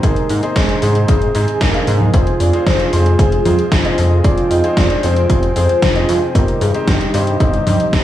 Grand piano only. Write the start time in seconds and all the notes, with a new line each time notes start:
0.03 C4 D#4 G#4 C5
0.43 C4 D#4 G#4 C5
0.82 C4 D#4 G#4 C5
1.09 C4 D#4 G#4 C5
1.35 C4 D#4 G#4 C5
1.74 C4 D#4 G#4 F5
2.14 C4 F4 G#4 C5
2.53 C4 F4 G#4 C5
2.93 C4 F4 G#4 C5
3.19 C4 F4 G#4 C5
3.45 C4 F4 G#4 C5
3.85 C4 F4 G#4 D#5
4.24 C4 F4 G#4 C5
4.64 C4 F4 G#4 C5
5.03 C4 F4 G#4 C5
5.30 C4 F4 G#4 C5
5.56 C4 F4 G#4 C5
5.96 C4 F4 G#4 D#5
6.35 C4 D#4 G4 C5
6.74 C4 D#4 G4 C5
7.14 C4 D#4 G4 C5
7.40 C4 D#4 G4 C5
7.67 C4 D#4 G4 C5